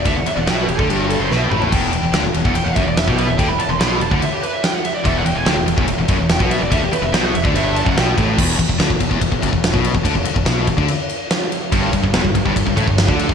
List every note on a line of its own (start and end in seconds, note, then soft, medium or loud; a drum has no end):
0.05 0.15 D2 medium
0.05 0.15 D3 loud
0.05 0.16 E5 medium
0.05 kick loud
0.05 ride loud
0.15 0.26 E1 medium
0.15 0.25 E2 medium
0.15 0.26 F#5 medium
0.26 0.33 E5 loud
0.26 muted distorted electric guitar stroke medium
0.26 muted fingered electric bass stroke soft
0.26 ride medium
0.33 0.47 E1 medium
0.33 0.47 E2 medium
0.33 0.40 D5 medium
0.41 0.48 F#5 medium
0.47 0.67 B1 medium
0.47 0.67 B2 loud
0.47 0.54 G5 medium
0.47 snare loud
0.47 ride loud
0.53 0.61 E5 medium
0.61 0.67 B4 medium
0.68 0.78 E1 medium
0.68 0.78 E2 medium
0.68 0.77 G4 medium
0.68 ride medium
0.77 0.88 D2 medium
0.77 0.89 D3 loud
0.77 0.88 A4 medium
0.77 kick loud
0.89 1.18 G1 loud
0.89 1.20 G2 loud
0.89 0.99 G4 medium
0.89 ride loud
0.99 1.09 F#4 medium
1.09 1.20 A4 medium
1.09 ride medium
1.19 1.30 F#1 medium
1.19 1.30 F#2 loud
1.19 1.30 C5 medium
1.30 1.50 B1 medium
1.30 1.51 B2 loud
1.30 1.37 B4 medium
1.30 snare medium
1.36 1.43 E5 medium
1.43 1.51 G5 medium
1.50 1.71 A1 medium
1.50 1.72 A2 medium
1.50 1.60 B5 loud
1.50 mid tom medium
1.60 1.71 A5 medium
1.60 floor tom medium
1.70 1.92 E1 loud
1.70 1.92 E2 loud
1.70 2.10 G5 medium
1.70 kick loud
1.70 ride medium
1.70 crash medium
1.93 2.03 E1 medium
1.93 2.02 E2 medium
1.93 ride medium
2.03 2.13 E1 medium
2.03 2.14 E2 medium
2.13 2.23 D2 medium
2.13 2.24 D3 loud
2.13 snare loud
2.13 ride loud
2.23 2.33 E1 medium
2.23 2.35 E2 medium
2.34 2.44 E1 medium
2.34 2.44 E2 medium
2.34 ride medium
2.45 2.55 E1 loud
2.45 2.55 E2 loud
2.45 2.54 F#5 medium
2.45 kick loud
2.54 2.65 E1 medium
2.54 2.65 E2 medium
2.54 2.65 G5 loud
2.54 ride loud
2.65 2.76 E1 medium
2.65 2.77 E2 medium
2.65 2.75 F#5 medium
2.75 2.86 F#1 medium
2.75 2.86 F#2 loud
2.75 2.86 E5 medium
2.75 kick loud
2.75 ride medium
2.86 3.06 E1 medium
2.86 3.04 E2 medium
2.86 2.98 D5 medium
2.97 3.07 E5 loud
2.97 snare loud
2.97 ride loud
3.07 3.27 B1 medium
3.07 3.28 B2 loud
3.07 3.17 G4 medium
3.07 kick loud
3.17 3.28 B4 medium
3.17 ride medium
3.27 3.38 E1 medium
3.27 3.39 E2 medium
3.27 3.38 E5 medium
3.37 3.48 D2 medium
3.37 3.48 D3 loud
3.37 3.48 G5 medium
3.37 kick loud
3.37 ride loud
3.48 3.58 E1 medium
3.48 3.58 E2 medium
3.48 3.59 B5 loud
3.59 3.69 A5 loud
3.59 muted fingered electric bass stroke soft
3.59 muted distorted electric guitar stroke medium
3.59 ride medium
3.69 3.78 E1 medium
3.69 3.80 E2 medium
3.69 3.79 C6 loud
3.79 3.99 B1 medium
3.79 4.00 B2 loud
3.79 3.87 B5 medium
3.79 snare loud
3.79 ride loud
3.87 3.94 C6 loud
3.95 4.01 B5 medium
4.00 4.10 E1 medium
4.00 4.11 E2 medium
4.00 4.11 A5 loud
4.00 ride medium
4.11 4.21 D2 loud
4.11 4.21 D3 loud
4.11 4.22 F#5 loud
4.11 kick loud
4.21 4.32 E5 medium
4.21 ride loud
4.33 4.43 G4 medium
4.43 4.53 B4 medium
4.43 ride medium
4.53 4.63 E5 medium
4.63 4.73 G5 loud
4.63 snare loud
4.63 ride medium
4.74 4.84 F#5 medium
4.84 4.94 E5 loud
4.84 ride medium
4.95 5.05 D5 medium
5.05 5.25 E1 loud
5.05 5.24 E2 loud
5.05 5.17 E5 loud
5.05 kick loud
5.05 ride medium
5.17 5.25 F#5 medium
5.25 5.35 E1 medium
5.25 5.35 E2 medium
5.25 5.37 G5 loud
5.25 ride medium
5.36 5.46 E1 medium
5.36 5.46 E2 medium
5.36 5.47 G#5 loud
5.45 5.56 D2 loud
5.45 5.56 D3 loud
5.45 5.60 G5 loud
5.45 snare loud
5.45 ride medium
5.56 5.67 E1 medium
5.56 5.65 E2 medium
5.66 5.77 E1 medium
5.66 5.75 E2 medium
5.66 ride medium
5.77 5.87 E1 loud
5.77 5.86 E2 loud
5.77 kick loud
5.87 5.97 E1 medium
5.87 5.97 E2 medium
5.87 ride loud
5.97 6.08 E1 medium
5.97 6.08 E2 medium
6.08 6.18 F#1 loud
6.08 6.18 F#2 loud
6.08 kick loud
6.08 ride medium
6.19 6.39 E1 medium
6.19 6.36 E2 medium
6.29 6.41 G5 loud
6.29 snare loud
6.29 ride loud
6.39 6.60 B1 loud
6.39 6.60 B2 loud
6.39 6.51 F#5 medium
6.39 kick loud
6.51 6.61 E5 loud
6.51 ride medium
6.60 6.71 E1 medium
6.60 6.71 E2 medium
6.60 6.71 D5 medium
6.71 6.81 D2 loud
6.71 6.81 D3 loud
6.71 6.82 E5 loud
6.71 kick loud
6.71 ride loud
6.81 6.92 E1 medium
6.81 6.90 E2 medium
6.81 6.93 G4 medium
6.91 7.03 B4 loud
6.91 muted distorted electric guitar stroke medium
6.91 muted fingered electric bass stroke soft
6.91 ride medium
7.02 7.12 E1 medium
7.02 7.13 E2 medium
7.02 7.14 E5 loud
7.12 7.32 B1 loud
7.12 7.33 B2 loud
7.12 7.24 G5 loud
7.12 snare loud
7.12 ride loud
7.24 7.34 F#5 loud
7.33 7.44 E1 medium
7.33 7.44 E2 medium
7.33 7.45 E5 loud
7.33 ride medium
7.43 7.54 D2 loud
7.43 7.54 D3 loud
7.43 7.55 D5 medium
7.43 kick loud
7.54 7.84 G1 loud
7.54 7.85 G2 loud
7.54 7.75 E5 medium
7.54 ride loud
7.76 7.85 A5 loud
7.76 ride medium
7.85 7.96 F#1 loud
7.85 7.96 F#2 loud
7.85 7.98 F#5 medium
7.85 kick loud
7.96 8.16 B1 loud
7.96 8.15 B2 loud
7.96 8.10 G5 loud
7.96 snare loud
7.96 ride loud
8.16 8.37 A1 loud
8.16 8.37 A2 loud
8.16 kick loud
8.16 ride medium
8.38 8.58 E1 loud
8.38 8.57 E2 loud
8.38 kick loud
8.38 crash loud
8.58 8.69 E1 medium
8.58 8.67 E2 medium
8.58 kick medium
8.58 ride medium
8.68 8.79 E1 medium
8.68 8.79 E2 medium
8.68 kick medium
8.79 8.89 D2 loud
8.79 8.89 D3 loud
8.79 snare loud
8.79 ride loud
8.90 9.00 E1 medium
8.90 8.99 E2 medium
8.90 kick loud
9.00 9.10 E1 medium
9.00 9.10 E2 medium
9.00 kick medium
9.00 ride medium
9.11 9.21 E1 loud
9.11 9.20 E2 loud
9.11 kick medium
9.21 9.31 E1 medium
9.21 9.30 E2 medium
9.21 kick medium
9.21 ride loud
9.32 9.42 E1 medium
9.32 9.42 E2 medium
9.32 kick medium
9.42 9.52 F#1 medium
9.42 9.51 F#2 medium
9.42 kick medium
9.42 ride medium
9.52 9.72 E1 medium
9.52 9.69 E2 medium
9.52 kick medium
9.64 snare loud
9.64 ride loud
9.72 9.93 B1 loud
9.72 9.93 B2 loud
9.72 kick loud
9.84 ride medium
9.94 10.04 E1 medium
9.94 10.05 E2 medium
9.94 kick loud
10.04 10.15 D2 loud
10.04 10.14 D3 loud
10.04 kick loud
10.04 ride loud
10.14 10.25 E1 medium
10.14 10.23 E2 medium
10.14 kick medium
10.25 muted distorted electric guitar stroke medium
10.25 muted fingered electric bass stroke soft
10.25 ride medium
10.35 10.46 E1 medium
10.35 10.46 E2 medium
10.35 kick medium
10.46 10.66 B1 loud
10.46 10.67 B2 loud
10.46 snare loud
10.46 ride loud
10.67 10.77 E1 medium
10.67 10.78 E2 medium
10.67 kick medium
10.67 ride medium
10.77 10.88 D2 loud
10.77 10.88 D3 loud
10.77 kick medium
10.88 ride loud
11.09 ride medium
11.31 snare loud
11.31 ride loud
11.52 ride medium
11.72 11.92 G1 loud
11.72 11.92 G2 loud
11.72 kick loud
11.72 ride loud
11.93 12.03 G1 medium
11.93 12.02 G2 medium
11.93 kick medium
11.93 ride medium
12.03 12.13 G1 medium
12.03 12.13 G2 medium
12.03 kick medium
12.14 12.24 E1 loud
12.14 12.24 E2 loud
12.14 snare loud
12.14 ride loud
12.24 12.34 G1 medium
12.24 12.33 G2 medium
12.24 kick loud
12.35 12.45 G1 medium
12.35 12.44 G2 medium
12.35 kick medium
12.35 ride medium
12.45 12.55 G1 loud
12.45 12.54 G2 loud
12.45 kick loud
12.55 12.66 G1 medium
12.55 12.65 G2 medium
12.55 kick medium
12.55 ride loud
12.66 12.76 G1 medium
12.66 12.77 G2 medium
12.66 kick medium
12.76 12.87 A1 medium
12.76 12.86 A2 loud
12.76 kick medium
12.76 ride medium
12.87 13.07 G1 medium
12.87 13.04 G2 medium
12.87 kick medium
12.98 snare loud
12.98 ride loud
13.08 13.28 D2 medium
13.08 13.28 D3 loud
13.08 kick loud
13.19 ride medium
13.29 13.34 G1 medium
13.29 13.34 G2 medium
13.29 kick loud